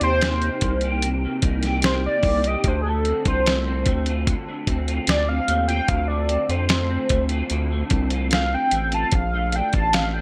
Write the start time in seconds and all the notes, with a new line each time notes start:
Already playing: C3 A#3 D#4
0.01 D#2 G4 C5, closed hi-hat
0.21 A#3, snare, closed hi-hat
0.42 D#4, closed hi-hat
0.61 C2 A#3, kick, closed hi-hat
0.81 G4, closed hi-hat
1.02 C3, closed hi-hat
1.25 A#3
1.42 C2 D#4, kick, closed hi-hat
1.63 G4, snare, closed hi-hat
1.82 A#3 C5, snare, closed hi-hat
2.06 D#4 D5
2.23 C2 A#3, kick, open hi-hat
2.44 G4 D#5, closed hi-hat
2.64 D2 D3 C5, kick, closed hi-hat
2.82 G#4
2.87 A3 A4
3.05 C4, closed hi-hat
3.25 C2 F4 C5, kick, closed hi-hat
3.46 A3, snare, closed hi-hat
3.67 C4
3.86 D2 A3, kick, closed hi-hat
4.06 F4, closed hi-hat
4.27 D3, kick, closed hi-hat
4.48 A3
4.67 D2 C4, kick, closed hi-hat
4.88 F4, closed hi-hat
5.07 D2 A3 D5, snare, closed hi-hat
5.28 C4 F5
5.48 D#2 A3, closed hi-hat
5.68 F4 G5, closed hi-hat
5.88 D2 D3 F5, kick, closed hi-hat
6.08 A3 D5
6.29 C4, closed hi-hat
6.49 F2 F4 C5, closed hi-hat
6.69 A3, snare, closed hi-hat
6.90 C4
7.09 D2 A3, kick, closed hi-hat
7.29 F4, closed hi-hat
7.50 D2 D3, closed hi-hat
7.72 A3
7.90 C2 C4, kick, closed hi-hat
8.10 F4, closed hi-hat
8.31 A3 F5, snare, closed hi-hat
8.53 C4 G5
8.71 A1 A3, closed hi-hat
8.92 F4 A5, closed hi-hat
9.12 A#1 F5, kick, closed hi-hat
9.34 A3
9.52 D4 G5, closed hi-hat
9.73 A1 F4 A5, kick, closed hi-hat
9.93 A3 F5, snare, closed hi-hat
10.14 D4 G5